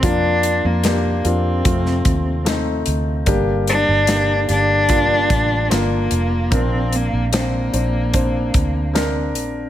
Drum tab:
HH |x-x-x-x-x-x-x-x-|x-x-x-x-x-x-x-x-|x-x-x-x-x-x-x-x-|
SD |----o----o--o---|----o-------o---|----o-------o---|
BD |o-------o-o-----|o-------o-o-----|o-------o-o-----|